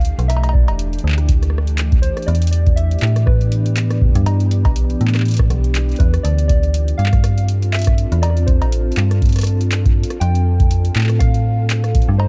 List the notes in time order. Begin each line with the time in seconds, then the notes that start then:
Already playing: D2 E3 A3 D4 G4 D5 F5
0.01 closed hi-hat
0.05 closed hi-hat
0.19 B1, closed hi-hat
0.28 E5, cross-stick, closed hi-hat, cowbell
0.37 cowbell
0.44 closed hi-hat, cowbell
0.49 cowbell
0.53 D5, kick
0.68 E1, closed hi-hat, cowbell
0.79 closed hi-hat
0.93 closed hi-hat
0.99 closed hi-hat
1.04 D2
1.08 clap
1.12 clap
1.18 cross-stick, closed hi-hat
1.29 kick, closed hi-hat
1.43 cross-stick, closed hi-hat
1.50 cross-stick
1.58 cross-stick
1.67 closed hi-hat
1.78 clap, closed hi-hat
1.92 kick, closed hi-hat
2.02 C5, closed hi-hat
2.17 cross-stick, closed hi-hat
2.22 closed hi-hat
2.27 E2 D5, closed hi-hat
2.35 B3, closed hi-hat
2.42 closed hi-hat
2.47 closed hi-hat
2.51 D5, closed hi-hat
2.67 kick, closed hi-hat
2.76 E5, closed hi-hat
2.91 closed hi-hat
2.99 A2, clap, closed hi-hat
3.02 closed hi-hat
3.07 closed hi-hat
3.16 cross-stick, closed hi-hat
3.26 B4, kick, cross-stick
3.41 closed hi-hat
3.52 closed hi-hat
3.66 closed hi-hat
3.77 clap, closed hi-hat
3.91 cross-stick, closed hi-hat
4.02 kick
4.05 kick
4.08 kick
4.12 kick, closed hi-hat
4.15 G2, kick
4.24 kick, cross-stick, closed hi-hat, cowbell
4.40 closed hi-hat
4.51 closed hi-hat
4.65 B1, kick, closed hi-hat, cowbell
4.76 closed hi-hat
4.90 closed hi-hat
5.01 A2, closed hi-hat
5.08 clap, closed hi-hat
5.15 cross-stick, clap, closed hi-hat
5.17 clap, closed hi-hat
5.25 closed hi-hat
5.28 closed hi-hat
5.31 closed hi-hat
5.34 closed hi-hat
5.37 kick, cross-stick, closed hi-hat
5.50 B1, cross-stick, closed hi-hat
5.64 closed hi-hat
5.75 clap, closed hi-hat
5.89 closed hi-hat
5.92 closed hi-hat
5.96 E2 B4, closed hi-hat
6.00 kick, closed hi-hat
6.14 cross-stick, closed hi-hat
6.23 D2 F4 D5, closed hi-hat
6.36 C4, closed hi-hat
6.48 D5, kick, closed hi-hat
6.63 closed hi-hat
6.74 closed hi-hat
6.88 closed hi-hat
6.98 G2 F5, closed hi-hat
7.02 A4, clap
7.13 kick, cross-stick, closed hi-hat
7.24 cross-stick, closed hi-hat
7.38 closed hi-hat
7.49 closed hi-hat
7.62 closed hi-hat
7.72 E5, clap, closed hi-hat
7.76 closed hi-hat
7.79 closed hi-hat
7.82 closed hi-hat
7.84 kick, cross-stick, closed hi-hat
7.98 closed hi-hat
8.12 E2, closed hi-hat
8.22 D5, closed hi-hat, cowbell
8.30 cross-stick
8.37 closed hi-hat
8.46 C5, kick, closed hi-hat
8.62 A1, closed hi-hat, cowbell
8.72 closed hi-hat
8.92 closed hi-hat
8.97 G2, clap, closed hi-hat
9.11 cross-stick, closed hi-hat
9.22 kick, closed hi-hat
9.25 closed hi-hat
9.29 closed hi-hat
9.32 cross-stick, closed hi-hat
9.36 cross-stick, closed hi-hat
9.39 closed hi-hat
9.41 cross-stick, closed hi-hat
9.44 closed hi-hat
9.47 closed hi-hat
9.61 closed hi-hat
9.72 clap, closed hi-hat
9.86 kick, closed hi-hat
10.03 closed hi-hat
10.10 cross-stick, closed hi-hat
10.20 F2 G5, closed hi-hat
10.35 closed hi-hat
10.46 A3
10.60 kick, closed hi-hat
10.71 closed hi-hat
10.85 closed hi-hat
10.96 A2, clap, closed hi-hat
10.98 clap
11.01 clap
11.04 C5, clap
11.07 cross-stick, clap, closed hi-hat
11.19 F5, kick, cross-stick, closed hi-hat
11.34 closed hi-hat
11.70 clap, closed hi-hat
11.84 cross-stick, closed hi-hat
11.95 kick, closed hi-hat
12.02 closed hi-hat
12.09 G2
12.18 C5, cross-stick, cowbell